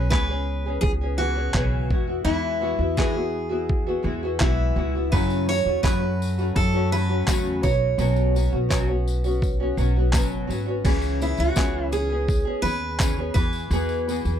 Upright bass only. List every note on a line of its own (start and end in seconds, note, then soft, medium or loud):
0.00 0.11 B1 medium
0.11 0.79 C#2 medium
0.83 1.51 C#2 medium
1.54 1.88 B1 medium
1.90 2.24 E2 medium
2.25 2.75 E2 medium
2.79 4.01 E2 medium
4.04 4.38 E2 medium
4.40 4.74 B1 medium
4.76 5.10 C#2 medium
5.13 5.62 F#2 loud
5.65 5.82 E2 medium
5.84 6.52 F#2 medium
6.56 7.23 F#2 medium
7.27 7.60 E2 medium
7.63 7.96 B1 medium
7.98 8.48 B1 medium
8.53 9.74 B1 medium
9.77 10.11 B1 medium
10.13 10.46 F#1 medium
10.49 10.82 G#1 medium
10.84 11.35 C#2 medium
11.39 11.55 C#2 medium
11.56 12.42 C#2 medium
12.63 13.31 D#2 medium
13.35 13.69 E2 medium
13.71 14.21 E2 loud
14.25 14.40 E2 medium